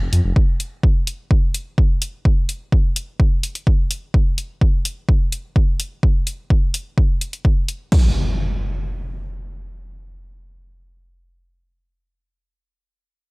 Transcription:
0.01 0.08 F1 medium
0.13 0.20 F2 loud
0.13 closed hi-hat loud
0.25 0.32 F1 medium
0.36 kick loud
0.60 closed hi-hat loud
0.83 kick loud
1.07 closed hi-hat loud
1.31 kick loud
1.54 closed hi-hat loud
1.78 kick loud
2.02 closed hi-hat loud
2.25 kick loud
2.49 closed hi-hat medium
2.72 kick loud
2.96 closed hi-hat loud
3.20 kick loud
3.43 closed hi-hat loud
3.55 closed hi-hat medium
3.67 kick loud
3.91 closed hi-hat medium
4.14 kick loud
4.38 closed hi-hat medium
4.61 kick loud
4.85 closed hi-hat loud
5.09 kick loud
5.32 closed hi-hat loud
5.56 kick loud
5.80 closed hi-hat medium
6.03 kick loud
6.27 closed hi-hat loud
6.50 kick loud
6.74 closed hi-hat loud
6.98 kick loud
7.21 closed hi-hat medium
7.33 closed hi-hat medium
7.45 kick loud
7.68 closed hi-hat medium
7.92 kick medium
7.92 crash medium
7.92 impact medium

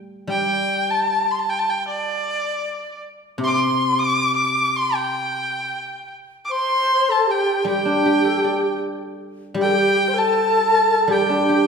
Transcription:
0.00 0.26 G3 medium
0.27 2.62 G3 medium
0.27 0.92 G5 loud
0.90 1.33 A5 medium
1.31 1.40 C6 medium
1.39 1.51 A5 medium
1.49 1.60 G5 medium
1.59 1.71 A5 medium
1.70 1.88 G5 medium
1.88 2.99 D5 medium
3.38 5.71 C3 medium
3.44 3.49 C6 loud
3.44 3.56 D6 medium
3.55 4.00 C6 medium
3.99 4.35 D6 loud
4.36 4.78 D6 medium
4.77 4.97 C6 medium
4.95 6.11 G5 medium
6.45 6.52 D6 medium
6.50 7.11 C5 medium
6.50 7.13 C6 loud
7.09 7.29 A4 medium
7.09 7.32 A5 medium
7.27 7.66 G4 medium
7.27 7.67 G5 medium
7.64 9.53 G3 medium
7.64 8.78 G4 medium
7.64 8.78 G5 medium
7.85 9.38 D4 soft
8.05 9.58 G4 soft
8.24 9.77 A4 soft
8.44 9.96 D5 soft
9.54 11.06 G3 medium
9.54 9.66 G4 medium
9.61 9.73 A4 medium
9.61 10.20 G5 loud
9.72 10.10 G4 medium
10.08 10.16 C5 medium
10.14 11.12 A4 loud
10.14 11.14 A5 medium
11.08 11.67 G3 medium
11.08 11.67 G4 medium
11.12 11.67 G5 medium
11.29 11.67 D4 soft
11.49 11.67 G4 soft

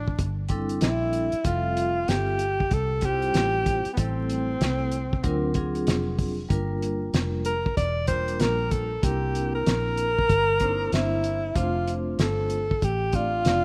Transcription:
0.00 0.16 A1 medium
0.00 0.51 D4 medium
0.08 kick medium
0.19 0.79 G1 medium
0.19 kick medium
0.19 closed hi-hat medium
0.48 1.25 G3 medium
0.48 1.26 C4 medium
0.48 1.26 D4 medium
0.48 1.26 E4 medium
0.48 1.27 A4 medium
0.48 kick medium
0.48 closed hi-hat medium
0.69 closed hi-hat soft
0.81 1.30 A#1 medium
0.81 1.47 E4 medium
0.81 snare loud
0.81 closed hi-hat medium
1.13 closed hi-hat medium
1.32 muted fingered electric bass stroke soft
1.32 closed hi-hat soft
1.44 2.05 F1 loud
1.44 2.43 G3 medium
1.44 2.43 C4 medium
1.44 2.11 F4 medium
1.44 2.44 F4 medium
1.44 2.44 A4 medium
1.44 2.43 E5 medium
1.44 kick loud
1.44 closed hi-hat medium
1.77 closed hi-hat medium
2.08 2.68 G1 medium
2.08 2.75 G4 loud
2.08 snare loud
2.08 closed hi-hat medium
2.39 closed hi-hat medium
2.60 kick medium
2.71 3.31 C2 medium
2.71 3.06 A4 loud
2.71 kick medium
2.71 closed hi-hat medium
3.01 3.78 G3 medium
3.01 3.79 C4 medium
3.01 3.79 E4 medium
3.01 3.79 F4 medium
3.01 3.93 G4 loud
3.01 3.79 C5 medium
3.01 kick medium
3.01 closed hi-hat medium
3.22 closed hi-hat soft
3.34 3.83 A1 medium
3.34 snare medium
3.34 closed hi-hat medium
3.66 kick medium
3.66 closed hi-hat medium
3.85 muted fingered electric bass stroke soft
3.85 closed hi-hat soft
3.94 4.58 A1 medium
3.94 4.95 G3 medium
3.94 4.96 A3 medium
3.94 4.01 B3 medium
3.94 4.96 C4 medium
3.94 kick loud
3.94 closed hi-hat medium
3.98 5.88 C4 medium
3.98 4.96 E4 medium
3.98 4.97 A4 medium
4.30 closed hi-hat medium
4.61 5.21 C2 medium
4.61 snare loud
4.61 closed hi-hat medium
4.92 closed hi-hat medium
5.13 kick medium
5.23 5.84 D2 loud
5.23 5.50 F#3 medium
5.23 5.51 C4 medium
5.23 5.51 D4 medium
5.23 5.51 F4 medium
5.23 5.52 A#4 medium
5.23 kick medium
5.23 closed hi-hat medium
5.54 6.31 F#3 medium
5.54 6.31 C4 medium
5.54 6.31 D4 medium
5.54 6.32 F4 medium
5.54 6.32 G#4 medium
5.54 kick medium
5.54 closed hi-hat medium
5.75 closed hi-hat soft
5.87 6.47 F1 medium
5.87 snare loud
5.87 closed hi-hat medium
6.18 kick medium
6.18 open hi-hat medium
6.49 7.10 G1 loud
6.49 7.48 G3 medium
6.49 7.48 A#3 medium
6.49 7.49 D4 medium
6.49 7.49 F4 medium
6.49 7.49 A#4 medium
6.49 kick medium
6.49 closed hi-hat medium
6.82 closed hi-hat medium
7.13 7.73 F1 medium
7.13 snare loud
7.13 closed hi-hat medium
7.45 7.75 A#4 medium
7.45 closed hi-hat medium
7.66 kick medium
7.77 8.37 E1 loud
7.77 8.06 D5 loud
7.77 kick medium
7.77 closed hi-hat medium
8.07 8.83 G3 medium
8.07 8.84 A#3 medium
8.07 8.84 D4 medium
8.07 8.84 F4 medium
8.07 8.85 A#4 medium
8.07 8.42 C5 loud
8.07 kick medium
8.07 closed hi-hat medium
8.28 closed hi-hat soft
8.40 9.00 A#1 medium
8.40 8.73 A#4 medium
8.40 snare medium
8.40 closed hi-hat medium
8.71 9.05 A4 loud
8.71 kick medium
8.71 closed hi-hat medium
9.03 9.63 C2 medium
9.03 10.01 A#3 medium
9.03 10.01 C4 medium
9.03 10.02 D4 medium
9.03 10.02 E4 medium
9.03 9.54 G4 medium
9.03 10.02 A#4 medium
9.03 kick loud
9.03 closed hi-hat medium
9.35 closed hi-hat medium
9.55 10.89 A#4 loud
9.66 10.26 A#1 medium
9.66 snare loud
9.66 closed hi-hat medium
9.97 closed hi-hat medium
10.19 kick medium
10.29 10.89 G1 loud
10.29 kick medium
10.29 closed hi-hat medium
10.60 11.36 A#3 medium
10.60 11.36 C4 medium
10.60 11.37 D4 medium
10.60 10.69 D#4 medium
10.60 11.37 C5 medium
10.60 kick medium
10.60 closed hi-hat medium
10.68 11.40 E4 medium
10.92 11.52 G1 medium
10.92 11.58 E4 medium
10.92 snare medium
10.92 closed hi-hat medium
11.24 closed hi-hat medium
11.54 12.16 F1 loud
11.54 12.53 A3 medium
11.54 12.54 C4 medium
11.54 12.54 D4 medium
11.54 12.54 F4 medium
11.54 11.94 F4 medium
11.54 12.55 C5 medium
11.54 kick loud
11.54 closed hi-hat medium
11.88 closed hi-hat medium
12.19 12.79 G1 medium
12.19 12.85 A4 medium
12.19 snare loud
12.19 closed hi-hat medium
12.50 closed hi-hat medium
12.71 kick medium
12.82 13.42 A1 loud
12.82 13.17 G4 medium
12.82 kick medium
12.82 closed hi-hat medium
13.12 13.65 A3 medium
13.12 13.65 C4 medium
13.12 13.65 D4 medium
13.12 13.65 F4 medium
13.12 13.65 F4 loud
13.12 13.65 D5 medium
13.12 kick medium
13.12 closed hi-hat medium
13.45 13.65 F1 medium
13.45 snare medium
13.45 closed hi-hat medium

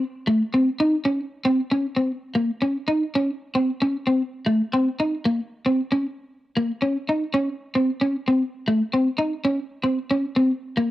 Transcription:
0.27 0.41 A3 medium
0.54 0.68 C4 medium
0.80 0.94 D#4 medium
1.05 1.19 C#4 medium
1.45 1.59 C4 medium
1.72 1.86 C#4 medium
1.97 2.11 C4 medium
2.35 2.50 A#3 medium
2.62 2.76 C#4 medium
2.88 3.02 D#4 medium
3.15 3.29 C#4 medium
3.55 3.69 C4 medium
3.82 3.96 C#4 medium
4.07 4.21 C4 medium
4.46 4.60 A3 medium
4.73 4.87 C4 medium
5.00 5.14 D#4 medium
5.25 5.39 A#3 medium
5.66 5.80 C4 medium
5.92 6.06 C#4 medium
6.57 6.71 A#3 medium
6.82 6.96 C#4 medium
7.09 7.23 D#4 medium
7.34 7.48 C#4 medium
7.75 7.89 C4 medium
8.01 8.15 C#4 medium
8.28 8.42 C4 medium
8.68 8.81 A3 medium
8.93 9.07 C4 medium
9.18 9.32 D#4 medium
9.45 9.59 C#4 medium
9.84 9.98 C4 medium
10.11 10.25 C#4 medium
10.36 10.50 C4 medium
10.77 10.91 A#3 medium

